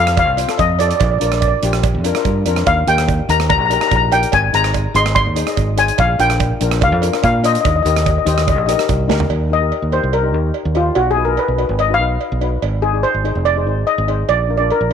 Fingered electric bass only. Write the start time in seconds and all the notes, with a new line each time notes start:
Already playing: F2
0.28 C2
0.59 F2
1.01 A#1
1.21 A#1
1.63 A#1
1.94 F2
2.25 G2
2.46 F2
2.67 D#2
2.87 D#2
3.29 D#2
3.61 A#1
3.92 A#1
4.33 G#1
4.53 G#1
4.94 G#1
5.26 D#2
5.57 G#1
5.99 A#1
6.19 A#1
6.61 A#1
6.92 F2
7.24 A#2
7.65 D#2
7.85 D#2
8.26 D#2
8.58 A#1
8.89 C2
9.10 D2
9.30 D#2
9.82 D#2
10.03 C2
10.34 D#2
10.65 D#2
10.96 B1
11.48 B1
11.69 G#1
12.00 B1
12.32 B1
12.62 G#1
13.14 G#1
13.35 F1
13.67 G#1
13.98 G#1
14.29 A#1
14.81 A#1